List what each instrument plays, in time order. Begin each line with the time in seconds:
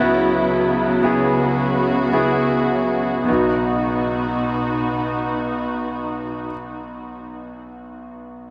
Already playing: grand piano C#2 C#3, string section C#3 F#3 B3 E4
0.00 grand piano B3 E4 F#4
1.03 grand piano B3 E4 G#4, string section F#4
2.13 grand piano B3 E4 G#4
3.25 grand piano B1 B3 D#4, string section B3 F#4
3.29 string section B2 D#4, grand piano F#4